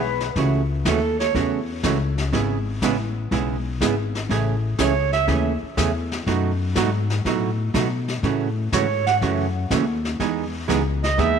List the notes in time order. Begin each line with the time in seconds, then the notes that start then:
Already playing: B1 B4
0.20 snare
0.36 C#2 C#3 E3 A3 C#4 F#4, brush sweep, kick, snare
0.85 D#2 C#3 E3 A3 C#4 F#4 A4, kick, snare, hi-hat pedal
1.19 C#5, snare
1.35 E2 C#3 E3 A3 C#4 F#4, brush sweep, kick, snare
1.83 C#2 C#3 E3 A3 C#4 F#4, kick, snare, hi-hat pedal
2.18 snare
2.32 G#1 C#3 G#3 B3 E4 G#4, brush sweep, kick, snare
2.82 A1 C#3 G#3 B3 E4 G#4, kick, snare, hi-hat pedal
3.31 B1 C#3 G#3 B3 E4 G#4, brush sweep, kick, snare
3.81 G#1 C#3 G#3 B3 E4 G#4, kick, snare, hi-hat pedal
4.15 snare
4.29 A1 C#3 E3 A3 C#4 G#4, brush sweep, kick, snare
4.79 C#2 C#3 E3 A3 C#4 G#4 C#5, kick, snare, hi-hat pedal
5.13 E5, snare
5.27 D#2 C#3 E3 A3 C#4 G#4, brush sweep, kick, snare
5.62 muted upright bass stroke
5.77 E2 C#3 E3 A3 C#4 G#4, kick, snare, hi-hat pedal
6.12 snare
6.27 F#2 B2 F#3 A3 D#4 F#4, brush sweep, kick, snare
6.75 G#2 B2 F#3 A3 D#4 F#4, kick, snare, hi-hat pedal
7.10 snare
7.25 A2 B2 F#3 A3 D#4 F#4, brush sweep, kick, snare
7.74 B2 F#3 A3 D#4 F#4, kick, snare, hi-hat pedal
8.08 snare
8.23 A2 C#3 E3 A3 C#4 F#4, brush sweep, kick, snare
8.72 G#2 C#3 E3 A3 C#4 F#4 C#5, kick, snare, hi-hat pedal
9.07 F#5, snare
9.21 F#2 C#3 E3 A3 C#4 F#4, brush sweep, kick, snare
9.70 D#2 C#3 E3 A3 C#4 F#4, kick, snare, hi-hat pedal
10.05 snare
10.20 E2 E3 G#3 B3 D#4 G#4, brush sweep, kick, snare
10.68 C#2 E3 G#3 B3 D#4 G#4, kick, snare, hi-hat pedal
11.04 D#5, snare
11.18 D#2 E3 G#3 B3 D#4 G#4 E5, brush sweep, kick, snare